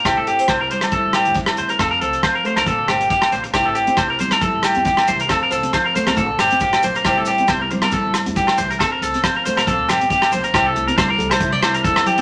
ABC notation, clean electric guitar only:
X:1
M:4/4
L:1/16
Q:"Swing 16ths" 1/4=137
K:Cmix
V:1 name="Clean electric guitar"
G A G2 c B c z A2 G2 z2 c B | A B A2 c B c B A2 G2 G2 c z | G A G2 c B c B A2 G2 G2 c B | A B A2 c B c B A2 G2 G2 c B |
G A G2 c B z B A2 z2 G2 c B | A B A2 c B c B A2 G2 G2 c B | G A2 B c B2 c2 d c B A2 G z |]